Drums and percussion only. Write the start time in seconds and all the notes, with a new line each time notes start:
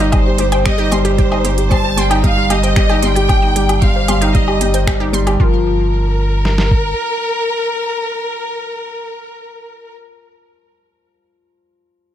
0.13 kick, closed hi-hat, low woodblock
0.38 closed hi-hat
0.52 closed hi-hat, low woodblock
0.66 finger snap, kick, closed hi-hat
0.92 closed hi-hat, low woodblock
1.05 closed hi-hat
1.19 kick, closed hi-hat
1.32 low woodblock
1.45 closed hi-hat
1.58 closed hi-hat
1.71 kick, closed hi-hat, low woodblock
1.98 closed hi-hat
2.11 closed hi-hat, low woodblock
2.24 kick, closed hi-hat
2.50 closed hi-hat, low woodblock
2.64 closed hi-hat
2.76 finger snap, kick, closed hi-hat
2.90 low woodblock
3.03 closed hi-hat
3.16 closed hi-hat
3.29 kick, closed hi-hat, low woodblock
3.56 closed hi-hat
3.69 closed hi-hat, low woodblock
3.82 kick, closed hi-hat
4.08 closed hi-hat, low woodblock
4.22 closed hi-hat
4.35 kick, closed hi-hat
4.48 low woodblock
4.61 closed hi-hat
4.74 closed hi-hat
4.87 finger snap, kick, closed hi-hat, low woodblock
5.14 closed hi-hat
5.27 closed hi-hat, low woodblock
5.40 kick
6.45 snare
6.58 snare
6.71 kick